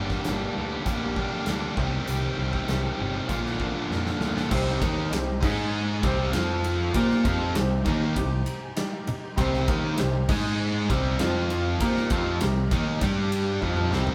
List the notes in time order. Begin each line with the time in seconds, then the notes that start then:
Already playing: G1 G2 D3 G3 A#3 D4 G4
0.00 D4 G4
0.10 A#3 D4 G4, kick, snare
0.15 G3
0.25 G1 G2 D3 G3 A#3, snare, closed hi-hat
0.30 D4 G4
0.56 D2 G3 A#3 D4 G4
0.71 G3 A#3 D4 G4
0.85 A#1 G2 D3 G3 A#3 D4, kick, closed hi-hat
0.89 G4
1.16 G3 A#3 D4, kick
1.21 G2 D3 G4
1.32 G3 A#3 D4 G4
1.46 D2 G2 D3 G3 A#3 D4, snare, closed hi-hat
1.50 G4
1.76 C2 C3 D#3 G3 C4 G4, kick
1.92 G3 C4 G4
2.07 C2 C3 D#3 G3 C4 G4, closed hi-hat
2.22 G3 C4 G4
2.37 C2 D#3 G3 C4 G4
2.53 G3 C4 G4, kick
2.67 C2 C3 D#3 G3 C4 G4, snare, closed hi-hat
2.98 G1 D#3 G3 C4 G4
3.14 G3 C4 G4
3.29 A#1 A#2 D3 A#3 D4 F4, kick, closed hi-hat
3.46 snare
3.59 D3 A#3 D4 F4, kick
3.75 A#3 D4 F4
3.89 F2 A#2 D3 A#3 D4 F4, snare
4.06 snare
4.20 D2 D3 A#3 D4 F4, snare
4.35 A#3 D4 F4, snare
4.51 C2 C3 G3 C4 D#4 G4 C5 D#5, kick, crash
4.68 snare
4.82 D#2 D#3 A#3 D#4, kick, ride
5.12 C2 C3 G3 D#4 G4 C5, snare, ride
5.42 G#2 G#3 D#4 G#4 D#5 G#5, kick, crash
6.03 C2 C3 G3 C4 D#4 G4 C5, kick, ride
6.33 F2 F3 C4 F4 C5 F5, snare, ride
6.64 ride
6.94 A#2 A#3 D#4 F4 G4 A#4 C5 G5, kick, ride
7.10 snare
7.25 F2 F3 C4 F4, kick, ride
7.55 C2 C3 G3 D#4 G4 C5, snare, ride
7.86 D#2 D#3 A#3 D#4, kick, ride
8.16 C2 C3 G3 D#4 G4 C5, kick, ride
8.46 A#5, ride
8.62 G#5
8.76 D#4 G4 D5 G5, snare, ride
8.93 F5
9.07 D#5, muted distorted electric guitar stroke, muted overdriven electric guitar stroke, muted picked electric bass stroke, ride
9.36 C2 C3 G3 C4 D#4 G4 C5, kick, ride
9.54 snare
9.68 D#2 D#3 A#3 D#4, kick, ride
9.97 C2 C3 G3 D#4 G4 C5, snare, ride
10.28 G#2 G#3 D#4 G#4 D#5 G#5, kick, crash
10.89 C2 C3 G3 C4 D#4 G4 C5, kick, ride
11.19 F2 F3 C4 F4 C5 F5, snare, ride
11.50 ride
11.80 A#2 A#3 D#4 F4 G4 A#4 C5 D#5, kick, ride
11.97 snare
12.10 F2 F3 C4 F4, kick, ride
12.41 C2 C3 G3 D#4 G4 A#4, snare, ride
12.71 D#2 D#3 A#3 D#4, kick, ride
13.01 G2 G3 D4 G4 D5, kick, ride
13.32 ride
13.62 F2 F3 C4 D#4 F4 G4 C5 D#5, kick
13.77 mid tom
13.93 C2 C3 G3 C4, snare
14.07 floor tom